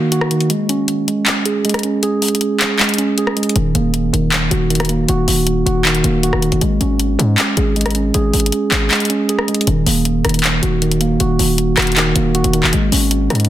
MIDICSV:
0, 0, Header, 1, 4, 480
1, 0, Start_track
1, 0, Key_signature, -6, "minor"
1, 0, Tempo, 382166
1, 628, Time_signature, 4, 2, 24, 8
1, 16943, End_track
2, 0, Start_track
2, 0, Title_t, "Tine electric piano"
2, 0, Program_c, 0, 4
2, 0, Note_on_c, 0, 51, 90
2, 0, Note_on_c, 0, 58, 77
2, 0, Note_on_c, 0, 66, 87
2, 133, Note_off_c, 0, 66, 0
2, 148, Note_on_c, 0, 66, 93
2, 374, Note_off_c, 0, 51, 0
2, 389, Note_on_c, 0, 51, 73
2, 629, Note_off_c, 0, 51, 0
2, 629, Note_off_c, 0, 58, 0
2, 629, Note_off_c, 0, 66, 0
2, 631, Note_on_c, 0, 56, 89
2, 869, Note_on_c, 0, 61, 83
2, 1336, Note_off_c, 0, 56, 0
2, 1351, Note_on_c, 0, 56, 72
2, 1829, Note_on_c, 0, 68, 80
2, 2058, Note_off_c, 0, 56, 0
2, 2073, Note_on_c, 0, 56, 87
2, 2299, Note_off_c, 0, 61, 0
2, 2314, Note_on_c, 0, 61, 73
2, 2534, Note_off_c, 0, 68, 0
2, 2549, Note_on_c, 0, 68, 101
2, 3252, Note_off_c, 0, 68, 0
2, 3267, Note_on_c, 0, 68, 78
2, 3495, Note_off_c, 0, 56, 0
2, 3510, Note_on_c, 0, 56, 85
2, 3731, Note_off_c, 0, 61, 0
2, 3747, Note_on_c, 0, 61, 83
2, 3981, Note_off_c, 0, 68, 0
2, 3996, Note_on_c, 0, 68, 86
2, 4218, Note_off_c, 0, 56, 0
2, 4233, Note_on_c, 0, 56, 71
2, 4468, Note_off_c, 0, 61, 0
2, 4471, Note_off_c, 0, 56, 0
2, 4472, Note_off_c, 0, 68, 0
2, 4472, Note_on_c, 0, 51, 87
2, 4709, Note_on_c, 0, 58, 81
2, 5174, Note_off_c, 0, 51, 0
2, 5189, Note_on_c, 0, 51, 74
2, 5662, Note_on_c, 0, 66, 86
2, 5889, Note_off_c, 0, 51, 0
2, 5904, Note_on_c, 0, 51, 80
2, 6134, Note_off_c, 0, 58, 0
2, 6149, Note_on_c, 0, 58, 78
2, 6380, Note_off_c, 0, 66, 0
2, 6395, Note_on_c, 0, 66, 104
2, 7094, Note_off_c, 0, 66, 0
2, 7109, Note_on_c, 0, 66, 92
2, 7334, Note_off_c, 0, 51, 0
2, 7349, Note_on_c, 0, 51, 89
2, 7574, Note_off_c, 0, 58, 0
2, 7589, Note_on_c, 0, 58, 79
2, 7813, Note_off_c, 0, 66, 0
2, 7828, Note_on_c, 0, 66, 91
2, 8053, Note_off_c, 0, 51, 0
2, 8068, Note_on_c, 0, 51, 73
2, 8308, Note_off_c, 0, 51, 0
2, 8308, Note_off_c, 0, 66, 0
2, 8309, Note_off_c, 0, 58, 0
2, 8310, Note_on_c, 0, 56, 89
2, 8549, Note_on_c, 0, 61, 85
2, 9016, Note_off_c, 0, 56, 0
2, 9031, Note_on_c, 0, 56, 68
2, 9509, Note_on_c, 0, 68, 80
2, 9738, Note_off_c, 0, 56, 0
2, 9753, Note_on_c, 0, 56, 88
2, 9980, Note_off_c, 0, 61, 0
2, 9995, Note_on_c, 0, 61, 74
2, 10214, Note_off_c, 0, 68, 0
2, 10229, Note_on_c, 0, 68, 98
2, 10931, Note_off_c, 0, 68, 0
2, 10947, Note_on_c, 0, 68, 78
2, 11175, Note_off_c, 0, 56, 0
2, 11190, Note_on_c, 0, 56, 85
2, 11411, Note_off_c, 0, 61, 0
2, 11426, Note_on_c, 0, 61, 79
2, 11660, Note_off_c, 0, 68, 0
2, 11676, Note_on_c, 0, 68, 85
2, 11898, Note_off_c, 0, 56, 0
2, 11913, Note_on_c, 0, 56, 73
2, 12147, Note_off_c, 0, 61, 0
2, 12151, Note_off_c, 0, 56, 0
2, 12152, Note_off_c, 0, 68, 0
2, 12152, Note_on_c, 0, 51, 89
2, 12390, Note_on_c, 0, 58, 82
2, 12854, Note_off_c, 0, 51, 0
2, 12869, Note_on_c, 0, 51, 75
2, 13343, Note_on_c, 0, 66, 86
2, 13569, Note_off_c, 0, 51, 0
2, 13585, Note_on_c, 0, 51, 81
2, 13814, Note_off_c, 0, 58, 0
2, 13829, Note_on_c, 0, 58, 82
2, 14061, Note_off_c, 0, 66, 0
2, 14076, Note_on_c, 0, 66, 106
2, 14774, Note_off_c, 0, 66, 0
2, 14789, Note_on_c, 0, 66, 90
2, 15015, Note_off_c, 0, 51, 0
2, 15030, Note_on_c, 0, 51, 94
2, 15254, Note_off_c, 0, 58, 0
2, 15269, Note_on_c, 0, 58, 77
2, 15493, Note_off_c, 0, 66, 0
2, 15508, Note_on_c, 0, 66, 95
2, 15733, Note_off_c, 0, 51, 0
2, 15748, Note_on_c, 0, 51, 73
2, 15988, Note_off_c, 0, 51, 0
2, 15988, Note_off_c, 0, 66, 0
2, 15989, Note_off_c, 0, 58, 0
2, 15991, Note_on_c, 0, 56, 92
2, 16229, Note_on_c, 0, 61, 87
2, 16697, Note_off_c, 0, 56, 0
2, 16712, Note_on_c, 0, 56, 75
2, 16943, Note_off_c, 0, 56, 0
2, 16943, Note_off_c, 0, 61, 0
2, 16943, End_track
3, 0, Start_track
3, 0, Title_t, "808-style bass"
3, 0, Program_c, 1, 38
3, 4468, Note_on_c, 1, 27, 111
3, 4699, Note_off_c, 1, 27, 0
3, 4708, Note_on_c, 1, 27, 109
3, 5169, Note_off_c, 1, 27, 0
3, 5188, Note_on_c, 1, 27, 109
3, 5649, Note_off_c, 1, 27, 0
3, 5668, Note_on_c, 1, 27, 103
3, 6360, Note_off_c, 1, 27, 0
3, 6389, Note_on_c, 1, 27, 113
3, 6619, Note_off_c, 1, 27, 0
3, 6629, Note_on_c, 1, 27, 107
3, 7089, Note_off_c, 1, 27, 0
3, 7109, Note_on_c, 1, 27, 107
3, 7569, Note_off_c, 1, 27, 0
3, 7588, Note_on_c, 1, 27, 102
3, 7934, Note_off_c, 1, 27, 0
3, 7948, Note_on_c, 1, 27, 107
3, 8179, Note_off_c, 1, 27, 0
3, 8188, Note_on_c, 1, 27, 104
3, 8300, Note_off_c, 1, 27, 0
3, 8308, Note_on_c, 1, 32, 111
3, 8539, Note_off_c, 1, 32, 0
3, 8548, Note_on_c, 1, 32, 102
3, 9009, Note_off_c, 1, 32, 0
3, 9028, Note_on_c, 1, 44, 101
3, 9259, Note_off_c, 1, 44, 0
3, 9508, Note_on_c, 1, 32, 103
3, 10200, Note_off_c, 1, 32, 0
3, 10228, Note_on_c, 1, 32, 116
3, 10459, Note_off_c, 1, 32, 0
3, 10469, Note_on_c, 1, 32, 107
3, 10699, Note_off_c, 1, 32, 0
3, 10948, Note_on_c, 1, 32, 104
3, 11179, Note_off_c, 1, 32, 0
3, 12149, Note_on_c, 1, 27, 117
3, 12379, Note_off_c, 1, 27, 0
3, 12389, Note_on_c, 1, 27, 105
3, 12849, Note_off_c, 1, 27, 0
3, 12868, Note_on_c, 1, 27, 106
3, 13329, Note_off_c, 1, 27, 0
3, 13349, Note_on_c, 1, 27, 107
3, 14040, Note_off_c, 1, 27, 0
3, 14069, Note_on_c, 1, 27, 115
3, 14299, Note_off_c, 1, 27, 0
3, 14309, Note_on_c, 1, 27, 107
3, 14770, Note_off_c, 1, 27, 0
3, 14789, Note_on_c, 1, 27, 110
3, 15250, Note_off_c, 1, 27, 0
3, 15269, Note_on_c, 1, 27, 104
3, 15614, Note_off_c, 1, 27, 0
3, 15629, Note_on_c, 1, 27, 107
3, 15859, Note_off_c, 1, 27, 0
3, 15869, Note_on_c, 1, 27, 103
3, 15982, Note_off_c, 1, 27, 0
3, 15989, Note_on_c, 1, 32, 114
3, 16219, Note_off_c, 1, 32, 0
3, 16229, Note_on_c, 1, 32, 108
3, 16690, Note_off_c, 1, 32, 0
3, 16709, Note_on_c, 1, 44, 107
3, 16939, Note_off_c, 1, 44, 0
3, 16943, End_track
4, 0, Start_track
4, 0, Title_t, "Drums"
4, 149, Note_on_c, 9, 42, 70
4, 269, Note_on_c, 9, 37, 92
4, 275, Note_off_c, 9, 42, 0
4, 388, Note_on_c, 9, 42, 70
4, 394, Note_off_c, 9, 37, 0
4, 509, Note_off_c, 9, 42, 0
4, 509, Note_on_c, 9, 42, 41
4, 627, Note_off_c, 9, 42, 0
4, 627, Note_on_c, 9, 42, 82
4, 753, Note_off_c, 9, 42, 0
4, 870, Note_on_c, 9, 42, 70
4, 996, Note_off_c, 9, 42, 0
4, 1106, Note_on_c, 9, 42, 79
4, 1231, Note_off_c, 9, 42, 0
4, 1356, Note_on_c, 9, 42, 74
4, 1482, Note_off_c, 9, 42, 0
4, 1588, Note_on_c, 9, 39, 121
4, 1589, Note_on_c, 9, 42, 72
4, 1714, Note_off_c, 9, 39, 0
4, 1715, Note_off_c, 9, 42, 0
4, 1828, Note_on_c, 9, 42, 83
4, 1953, Note_off_c, 9, 42, 0
4, 2068, Note_on_c, 9, 42, 60
4, 2129, Note_off_c, 9, 42, 0
4, 2129, Note_on_c, 9, 42, 60
4, 2189, Note_off_c, 9, 42, 0
4, 2189, Note_on_c, 9, 37, 92
4, 2189, Note_on_c, 9, 42, 61
4, 2248, Note_off_c, 9, 42, 0
4, 2248, Note_on_c, 9, 42, 60
4, 2303, Note_off_c, 9, 42, 0
4, 2303, Note_on_c, 9, 42, 72
4, 2314, Note_off_c, 9, 37, 0
4, 2429, Note_off_c, 9, 42, 0
4, 2547, Note_on_c, 9, 42, 81
4, 2672, Note_off_c, 9, 42, 0
4, 2789, Note_on_c, 9, 42, 43
4, 2790, Note_on_c, 9, 46, 75
4, 2869, Note_off_c, 9, 42, 0
4, 2869, Note_on_c, 9, 42, 58
4, 2916, Note_off_c, 9, 46, 0
4, 2949, Note_off_c, 9, 42, 0
4, 2949, Note_on_c, 9, 42, 77
4, 3026, Note_off_c, 9, 42, 0
4, 3026, Note_on_c, 9, 42, 76
4, 3151, Note_off_c, 9, 42, 0
4, 3269, Note_on_c, 9, 39, 95
4, 3276, Note_on_c, 9, 42, 75
4, 3394, Note_off_c, 9, 39, 0
4, 3402, Note_off_c, 9, 42, 0
4, 3508, Note_on_c, 9, 39, 122
4, 3509, Note_on_c, 9, 42, 44
4, 3569, Note_off_c, 9, 42, 0
4, 3569, Note_on_c, 9, 42, 52
4, 3629, Note_off_c, 9, 42, 0
4, 3629, Note_on_c, 9, 42, 65
4, 3634, Note_off_c, 9, 39, 0
4, 3689, Note_off_c, 9, 42, 0
4, 3689, Note_on_c, 9, 42, 77
4, 3748, Note_off_c, 9, 42, 0
4, 3748, Note_on_c, 9, 42, 80
4, 3874, Note_off_c, 9, 42, 0
4, 3990, Note_on_c, 9, 42, 69
4, 4109, Note_on_c, 9, 37, 91
4, 4115, Note_off_c, 9, 42, 0
4, 4229, Note_on_c, 9, 42, 58
4, 4234, Note_off_c, 9, 37, 0
4, 4308, Note_off_c, 9, 42, 0
4, 4308, Note_on_c, 9, 42, 59
4, 4388, Note_off_c, 9, 42, 0
4, 4388, Note_on_c, 9, 42, 55
4, 4467, Note_off_c, 9, 42, 0
4, 4467, Note_on_c, 9, 42, 82
4, 4593, Note_off_c, 9, 42, 0
4, 4710, Note_on_c, 9, 42, 69
4, 4835, Note_off_c, 9, 42, 0
4, 4946, Note_on_c, 9, 42, 78
4, 5071, Note_off_c, 9, 42, 0
4, 5196, Note_on_c, 9, 42, 72
4, 5321, Note_off_c, 9, 42, 0
4, 5428, Note_on_c, 9, 39, 119
4, 5429, Note_on_c, 9, 42, 69
4, 5554, Note_off_c, 9, 39, 0
4, 5555, Note_off_c, 9, 42, 0
4, 5668, Note_on_c, 9, 42, 82
4, 5793, Note_off_c, 9, 42, 0
4, 5909, Note_on_c, 9, 42, 61
4, 5969, Note_off_c, 9, 42, 0
4, 5969, Note_on_c, 9, 42, 60
4, 6029, Note_off_c, 9, 42, 0
4, 6029, Note_on_c, 9, 37, 93
4, 6029, Note_on_c, 9, 42, 64
4, 6089, Note_off_c, 9, 42, 0
4, 6089, Note_on_c, 9, 42, 62
4, 6144, Note_off_c, 9, 42, 0
4, 6144, Note_on_c, 9, 42, 70
4, 6154, Note_off_c, 9, 37, 0
4, 6269, Note_off_c, 9, 42, 0
4, 6387, Note_on_c, 9, 42, 81
4, 6512, Note_off_c, 9, 42, 0
4, 6630, Note_on_c, 9, 46, 75
4, 6755, Note_off_c, 9, 46, 0
4, 6866, Note_on_c, 9, 42, 80
4, 6991, Note_off_c, 9, 42, 0
4, 7116, Note_on_c, 9, 42, 73
4, 7241, Note_off_c, 9, 42, 0
4, 7348, Note_on_c, 9, 39, 121
4, 7349, Note_on_c, 9, 42, 59
4, 7469, Note_off_c, 9, 42, 0
4, 7469, Note_on_c, 9, 42, 63
4, 7474, Note_off_c, 9, 39, 0
4, 7588, Note_off_c, 9, 42, 0
4, 7588, Note_on_c, 9, 42, 81
4, 7714, Note_off_c, 9, 42, 0
4, 7829, Note_on_c, 9, 42, 69
4, 7949, Note_on_c, 9, 37, 89
4, 7955, Note_off_c, 9, 42, 0
4, 8069, Note_on_c, 9, 42, 69
4, 8074, Note_off_c, 9, 37, 0
4, 8188, Note_off_c, 9, 42, 0
4, 8188, Note_on_c, 9, 42, 39
4, 8307, Note_off_c, 9, 42, 0
4, 8307, Note_on_c, 9, 42, 82
4, 8433, Note_off_c, 9, 42, 0
4, 8550, Note_on_c, 9, 42, 70
4, 8676, Note_off_c, 9, 42, 0
4, 8786, Note_on_c, 9, 42, 79
4, 8912, Note_off_c, 9, 42, 0
4, 9036, Note_on_c, 9, 42, 75
4, 9162, Note_off_c, 9, 42, 0
4, 9268, Note_on_c, 9, 39, 121
4, 9270, Note_on_c, 9, 42, 70
4, 9394, Note_off_c, 9, 39, 0
4, 9395, Note_off_c, 9, 42, 0
4, 9508, Note_on_c, 9, 42, 84
4, 9634, Note_off_c, 9, 42, 0
4, 9749, Note_on_c, 9, 42, 60
4, 9809, Note_off_c, 9, 42, 0
4, 9809, Note_on_c, 9, 42, 60
4, 9868, Note_off_c, 9, 42, 0
4, 9868, Note_on_c, 9, 37, 88
4, 9868, Note_on_c, 9, 42, 61
4, 9929, Note_off_c, 9, 42, 0
4, 9929, Note_on_c, 9, 42, 60
4, 9983, Note_off_c, 9, 42, 0
4, 9983, Note_on_c, 9, 42, 68
4, 9994, Note_off_c, 9, 37, 0
4, 10109, Note_off_c, 9, 42, 0
4, 10227, Note_on_c, 9, 42, 83
4, 10353, Note_off_c, 9, 42, 0
4, 10469, Note_on_c, 9, 42, 43
4, 10470, Note_on_c, 9, 46, 74
4, 10549, Note_off_c, 9, 42, 0
4, 10549, Note_on_c, 9, 42, 58
4, 10596, Note_off_c, 9, 46, 0
4, 10628, Note_off_c, 9, 42, 0
4, 10628, Note_on_c, 9, 42, 75
4, 10706, Note_off_c, 9, 42, 0
4, 10706, Note_on_c, 9, 42, 81
4, 10831, Note_off_c, 9, 42, 0
4, 10949, Note_on_c, 9, 39, 96
4, 10956, Note_on_c, 9, 42, 73
4, 11074, Note_off_c, 9, 39, 0
4, 11082, Note_off_c, 9, 42, 0
4, 11188, Note_on_c, 9, 39, 121
4, 11189, Note_on_c, 9, 42, 44
4, 11248, Note_off_c, 9, 42, 0
4, 11248, Note_on_c, 9, 42, 54
4, 11309, Note_off_c, 9, 42, 0
4, 11309, Note_on_c, 9, 42, 65
4, 11314, Note_off_c, 9, 39, 0
4, 11368, Note_off_c, 9, 42, 0
4, 11368, Note_on_c, 9, 42, 72
4, 11428, Note_off_c, 9, 42, 0
4, 11428, Note_on_c, 9, 42, 82
4, 11553, Note_off_c, 9, 42, 0
4, 11669, Note_on_c, 9, 42, 71
4, 11789, Note_on_c, 9, 37, 95
4, 11795, Note_off_c, 9, 42, 0
4, 11909, Note_on_c, 9, 42, 58
4, 11914, Note_off_c, 9, 37, 0
4, 11989, Note_off_c, 9, 42, 0
4, 11989, Note_on_c, 9, 42, 58
4, 12069, Note_off_c, 9, 42, 0
4, 12069, Note_on_c, 9, 42, 57
4, 12147, Note_off_c, 9, 42, 0
4, 12147, Note_on_c, 9, 42, 82
4, 12273, Note_off_c, 9, 42, 0
4, 12390, Note_on_c, 9, 46, 80
4, 12516, Note_off_c, 9, 46, 0
4, 12626, Note_on_c, 9, 42, 82
4, 12752, Note_off_c, 9, 42, 0
4, 12869, Note_on_c, 9, 37, 70
4, 12869, Note_on_c, 9, 42, 74
4, 12929, Note_off_c, 9, 42, 0
4, 12929, Note_on_c, 9, 42, 61
4, 12989, Note_off_c, 9, 42, 0
4, 12989, Note_on_c, 9, 42, 51
4, 12995, Note_off_c, 9, 37, 0
4, 13049, Note_off_c, 9, 42, 0
4, 13049, Note_on_c, 9, 42, 43
4, 13109, Note_on_c, 9, 39, 124
4, 13110, Note_off_c, 9, 42, 0
4, 13110, Note_on_c, 9, 42, 76
4, 13235, Note_off_c, 9, 39, 0
4, 13236, Note_off_c, 9, 42, 0
4, 13349, Note_on_c, 9, 42, 92
4, 13474, Note_off_c, 9, 42, 0
4, 13589, Note_on_c, 9, 42, 62
4, 13709, Note_off_c, 9, 42, 0
4, 13709, Note_on_c, 9, 42, 63
4, 13824, Note_off_c, 9, 42, 0
4, 13824, Note_on_c, 9, 42, 77
4, 13950, Note_off_c, 9, 42, 0
4, 14068, Note_on_c, 9, 42, 81
4, 14193, Note_off_c, 9, 42, 0
4, 14311, Note_on_c, 9, 46, 76
4, 14436, Note_off_c, 9, 46, 0
4, 14546, Note_on_c, 9, 42, 80
4, 14672, Note_off_c, 9, 42, 0
4, 14789, Note_on_c, 9, 37, 68
4, 14789, Note_on_c, 9, 39, 99
4, 14789, Note_on_c, 9, 42, 75
4, 14849, Note_off_c, 9, 42, 0
4, 14849, Note_on_c, 9, 42, 63
4, 14909, Note_off_c, 9, 42, 0
4, 14909, Note_on_c, 9, 42, 52
4, 14914, Note_off_c, 9, 37, 0
4, 14914, Note_off_c, 9, 39, 0
4, 14969, Note_off_c, 9, 42, 0
4, 14969, Note_on_c, 9, 42, 42
4, 15028, Note_on_c, 9, 39, 124
4, 15029, Note_off_c, 9, 42, 0
4, 15029, Note_on_c, 9, 42, 78
4, 15154, Note_off_c, 9, 39, 0
4, 15155, Note_off_c, 9, 42, 0
4, 15268, Note_on_c, 9, 42, 92
4, 15393, Note_off_c, 9, 42, 0
4, 15508, Note_on_c, 9, 42, 63
4, 15629, Note_off_c, 9, 42, 0
4, 15629, Note_on_c, 9, 42, 62
4, 15743, Note_off_c, 9, 42, 0
4, 15743, Note_on_c, 9, 42, 77
4, 15869, Note_off_c, 9, 42, 0
4, 15870, Note_on_c, 9, 39, 78
4, 15987, Note_on_c, 9, 42, 83
4, 15995, Note_off_c, 9, 39, 0
4, 16113, Note_off_c, 9, 42, 0
4, 16230, Note_on_c, 9, 46, 75
4, 16356, Note_off_c, 9, 46, 0
4, 16466, Note_on_c, 9, 42, 83
4, 16591, Note_off_c, 9, 42, 0
4, 16709, Note_on_c, 9, 37, 70
4, 16709, Note_on_c, 9, 42, 73
4, 16769, Note_off_c, 9, 42, 0
4, 16769, Note_on_c, 9, 42, 64
4, 16828, Note_off_c, 9, 42, 0
4, 16828, Note_on_c, 9, 42, 51
4, 16834, Note_off_c, 9, 37, 0
4, 16889, Note_off_c, 9, 42, 0
4, 16889, Note_on_c, 9, 42, 42
4, 16943, Note_off_c, 9, 42, 0
4, 16943, End_track
0, 0, End_of_file